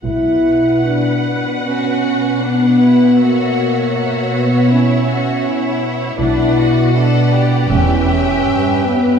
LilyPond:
<<
  \new Staff \with { instrumentName = "Violin section" } { \time 4/4 \key b \minor \tempo 4 = 79 fis''1~ | fis''1 | fis''4 fis''4 g''2 | }
  \new Staff \with { instrumentName = "Viola section" } { \time 4/4 \key b \minor <b' fis''>1 | <cis'' e''>1 | <b' d''>4 <b' d''>4 <b' e''>2 | }
  \new Staff \with { instrumentName = "Violin section" } { \time 4/4 \key b \minor r2 fis'4 d'8 e'8 | fis'4 fis'4 e'8 fis'8 e'4 | d'8 fis'8 a'8 g'2~ g'8 | }
  \new Staff \with { instrumentName = "French horn section" } { \time 4/4 \key b \minor e'4 d'4 cis'4 b4 | ais4. b8 cis'4. r8 | e'4 d'4 cis'4. b8 | }
  \new Staff \with { instrumentName = "Cello section" } { \clef bass \time 4/4 \key b \minor b,1~ | b,1 | b,2 e,4 g,4 | }
  \new Staff \with { instrumentName = "Double bass section" } { \clef bass \time 4/4 \key b \minor b,,4 r2. | r1 | b,,4 r4 e,,4 r4 | }
>>